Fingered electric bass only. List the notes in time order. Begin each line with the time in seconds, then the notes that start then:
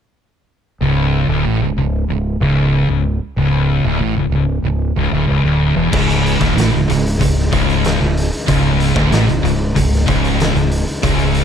0.81 C#1
1.29 D1
1.45 A1
1.62 C#1
1.76 C#1
2.08 C#1
2.40 C#1
2.88 C#1
3.36 C#1
3.84 D1
3.99 A1
4.15 C#1
4.30 C#1
4.62 C#1
4.96 C#1
5.12 D1
5.29 C#1
5.44 D1
5.76 E1
5.92 C#1
6.41 D1
6.57 A1
6.73 C#1
6.89 C#1
7.21 C#1
7.52 C#1
8.01 C#1
8.48 C#1
8.96 D1
9.10 A1
9.27 C#1
9.43 C#1
9.76 C#1
10.08 C#1
10.54 C#1
11.04 C#1